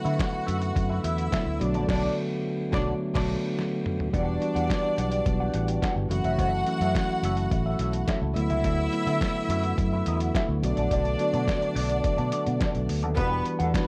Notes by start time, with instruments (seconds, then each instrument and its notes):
Already playing: tine electric piano D3 F#3 A3 B3 E4, tonewheel organ D3 A3 B3 E4, string section F#4 F#5
0.05 fingered electric bass D3, clean electric guitar F#4 B4 E5, closed hi-hat
0.19 muted clean electric guitar stroke, kick, snare, closed hi-hat
0.32 muted clean electric guitar stroke
0.46 fingered electric bass F#2, clean electric guitar F#4 B4 E5, closed hi-hat
0.61 muted clean electric guitar stroke, closed hi-hat
0.75 fingered electric bass F#2, muted clean electric guitar stroke, kick, closed hi-hat
0.89 clean electric guitar F#4 B4 E5
1.03 fingered electric bass E2, string section E4 E5, clean electric guitar F#4 B4 E5, closed hi-hat
1.18 muted clean electric guitar stroke, closed hi-hat
1.31 tine electric piano D3 F#3 A3 B3 E4, clean electric guitar F#4 B4 E5, kick, snare, closed hi-hat
1.46 fingered electric bass D2, muted clean electric guitar stroke
1.59 fingered electric bass B1, tine electric piano D3 F#3 A3 B3 F#4, string section D4 D5, muted clean electric guitar stroke, closed hi-hat
1.74 fingered electric bass A#1, clean electric guitar F#4 A4 D5, closed hi-hat
1.87 fingered electric bass B1, tine electric piano D3 F#3 A3 B3 F#4, string section D4 D5, clean electric guitar F#4 A4 D5, kick, snare, crash
2.72 fingered electric bass B1, tine electric piano D3 F#3 A3 B3 F#4, string section D4 D5, clean electric guitar F#4 A4 D5, kick, snare
3.14 fingered electric bass B1, tine electric piano D3 F#3 A3 B3 F#4, string section D4 D5, clean electric guitar F#4 A4 D5, kick, snare, crash
3.59 snare
3.86 mid tom
4.00 floor tom
4.13 fingered electric bass E1, tine electric piano E3 G3 B3 D4 F#4, tonewheel organ E3 G3 B3 D4 F#4, string section D4 D5, clean electric guitar G4 D5 F#5, kick, closed hi-hat
4.28 muted clean electric guitar stroke
4.41 tine electric piano E3 G3 B3 D4 F#4, muted clean electric guitar stroke, closed hi-hat
4.55 fingered electric bass E2, clean electric guitar G4 D5 F#5, closed hi-hat
4.70 muted clean electric guitar stroke, kick, snare, closed hi-hat
4.83 muted clean electric guitar stroke
4.97 fingered electric bass B1, clean electric guitar G4 D5 F#5, closed hi-hat
5.11 muted clean electric guitar stroke, closed hi-hat
5.26 fingered electric bass B1, muted clean electric guitar stroke, kick, closed hi-hat
5.40 clean electric guitar G4 D5 F#5
5.54 fingered electric bass A1, clean electric guitar G4 D5 F#5, closed hi-hat
5.68 muted clean electric guitar stroke, closed hi-hat
5.82 clean electric guitar G4 D5 F#5, kick, snare, closed hi-hat
5.96 fingered electric bass G1, muted clean electric guitar stroke
6.10 fingered electric bass F#1, tine electric piano E3 F#3 G#3 C#4 F#4, tonewheel organ A3 E4, string section F#4 F#5, muted clean electric guitar stroke, closed hi-hat
6.16 tine electric piano A3
6.24 fingered electric bass F1, clean electric guitar A4 C#5 E5, closed hi-hat
6.39 fingered electric bass F#1, clean electric guitar A4 C#5 E5, kick, closed hi-hat
6.54 muted clean electric guitar stroke
6.66 tine electric piano E3 F#3 A3 C#4 F#4, muted clean electric guitar stroke, closed hi-hat
6.81 fingered electric bass F#2, clean electric guitar A4 C#5 E5, closed hi-hat
6.95 kick, snare, closed hi-hat
7.10 muted clean electric guitar stroke
7.23 fingered electric bass F#1, clean electric guitar A4 C#5 E5, closed hi-hat
7.37 muted clean electric guitar stroke, closed hi-hat
7.51 fingered electric bass A1, muted clean electric guitar stroke, kick, closed hi-hat
7.66 clean electric guitar A4 C#5 E5
7.79 fingered electric bass B1, clean electric guitar A4 C#5 E5, closed hi-hat
7.93 muted clean electric guitar stroke, closed hi-hat
8.08 clean electric guitar A4 C#5 E5, kick, snare, closed hi-hat
8.22 fingered electric bass C#2, muted clean electric guitar stroke
8.36 fingered electric bass D2, tine electric piano D3 F#3 A3 B3 E4, tonewheel organ D3 B3, string section E4 E5, muted clean electric guitar stroke, closed hi-hat
8.50 fingered electric bass C#2, clean electric guitar F#4 B4 E5, closed hi-hat
8.64 fingered electric bass D2, clean electric guitar F#4 B4 E5, kick, closed hi-hat
8.79 muted clean electric guitar stroke
8.92 tine electric piano D3 F#3 A3 B3 E4, muted clean electric guitar stroke, closed hi-hat
9.07 fingered electric bass D3, clean electric guitar F#4 B4 E5, closed hi-hat
9.21 muted clean electric guitar stroke, kick, snare, closed hi-hat
9.36 muted clean electric guitar stroke
9.49 fingered electric bass F#2, clean electric guitar F#4 B4 E5, closed hi-hat
9.64 muted clean electric guitar stroke, closed hi-hat
9.78 fingered electric bass F#2, muted clean electric guitar stroke, kick, closed hi-hat
9.93 clean electric guitar F#4 B4 E5
10.06 fingered electric bass E2, clean electric guitar F#4 B4 E5, closed hi-hat
10.20 muted clean electric guitar stroke, closed hi-hat
10.35 clean electric guitar F#4 B4 E5, kick, snare, closed hi-hat
10.49 fingered electric bass D2, muted clean electric guitar stroke
10.62 fingered electric bass B1, tine electric piano D3 F#3 A3 B3 F#4, string section D4 D5, muted clean electric guitar stroke, closed hi-hat
10.77 fingered electric bass A#1, clean electric guitar F#4 A4 D5, closed hi-hat
10.91 fingered electric bass B1, clean electric guitar F#4 A4 D5, kick, closed hi-hat
11.05 muted clean electric guitar stroke, closed hi-hat
11.19 tine electric piano D3 F#3 A3 B3 F#4, muted clean electric guitar stroke, closed hi-hat
11.34 fingered electric bass B2, clean electric guitar F#4 A4 D5, closed hi-hat
11.47 muted clean electric guitar stroke, kick, snare, closed hi-hat
11.62 muted clean electric guitar stroke, closed hi-hat
11.75 fingered electric bass B1, clean electric guitar F#4 A4 D5, open hi-hat
11.89 muted clean electric guitar stroke, closed hi-hat
12.04 muted clean electric guitar stroke, kick, closed hi-hat
12.17 fingered electric bass B2, clean electric guitar F#4 A4 D5, closed hi-hat
12.32 clean electric guitar F#4 A4 D5, closed hi-hat
12.45 fingered electric bass B2, muted clean electric guitar stroke, closed hi-hat
12.60 clean electric guitar F#4 A4 D5, kick, snare, closed hi-hat
12.74 fingered electric bass B1, muted clean electric guitar stroke, closed hi-hat
12.88 fingered electric bass D2, muted clean electric guitar stroke, open hi-hat
13.03 fingered electric bass D#2, clean electric guitar F#4 A4 D5, closed hi-hat
13.17 fingered electric bass E1, tine electric piano E3 G3 B3 D4 F#4, tonewheel organ E3 G3 B3 D4 F#4, string section B3 B4, clean electric guitar G4 D5 F#5, kick, closed hi-hat
13.31 muted clean electric guitar stroke
13.45 muted clean electric guitar stroke, closed hi-hat
13.59 fingered electric bass E2, string section A3 A4, clean electric guitar G4 D5 F#5, closed hi-hat
13.74 tine electric piano E3 G3 B3 D4 F#4, string section B3 B4, kick, snare, closed hi-hat